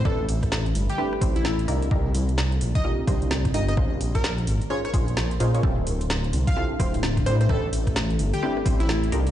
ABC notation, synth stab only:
X:1
M:4/4
L:1/16
Q:"Swing 16ths" 1/4=129
K:Aphr
V:1 name="Synth stab"
[CDEG=B] z6 z [CDEGB] z [CDEGc] z3 [D_EFG_B]2 | [D_EFGB] z6 z [DEFGB] z [DEFGc] z3 [DEFGB]2 | [_D_EF_Ac] z6 z [DEFAc] z [DEFAc] z3 [DEFAc] [DEFA_d] | [CEFGA] z6 z [CEFGA] z [CEFGc] z3 [CDEG=B]2 |
[CDEG=B] z6 z [CDEGB] z [CDEGc] z3 [D_EFG_B]2 |]